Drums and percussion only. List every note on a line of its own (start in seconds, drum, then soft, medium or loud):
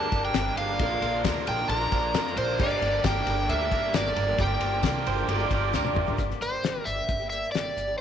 0.12 kick medium
0.12 ride medium
0.34 snare loud
0.34 ride medium
0.34 tambourine loud
0.57 ride medium
0.79 kick loud
0.79 ride loud
1.02 ride medium
1.25 kick loud
1.25 snare loud
1.25 ride loud
1.25 tambourine loud
1.47 ride medium
1.69 ride loud
1.92 kick medium
1.92 ride medium
2.14 snare loud
2.14 ride loud
2.14 tambourine medium
2.27 snare soft
2.37 ride medium
2.59 kick loud
2.59 crash loud
2.82 ride medium
3.04 kick loud
3.04 snare loud
3.04 ride loud
3.04 tambourine loud
3.27 ride medium
3.49 ride loud
3.72 kick medium
3.72 ride medium
3.94 snare loud
3.94 ride medium
3.94 tambourine loud
4.06 snare soft
4.16 ride medium
4.39 kick loud
4.39 ride medium
4.61 ride medium
4.83 kick medium
4.83 snare loud
4.83 ride loud
4.83 tambourine loud
5.07 ride medium
5.29 ride loud
5.51 kick medium
5.51 ride medium
5.74 snare medium
5.74 tambourine loud
5.85 high tom medium
5.96 mid tom loud
6.08 floor tom medium
6.18 kick medium
6.18 closed hi-hat medium
6.31 snare soft
6.42 closed hi-hat medium
6.64 snare loud
6.64 closed hi-hat medium
6.87 closed hi-hat medium
7.09 kick loud
7.09 closed hi-hat medium
7.32 closed hi-hat medium
7.55 snare medium
7.55 closed hi-hat medium
7.78 closed hi-hat medium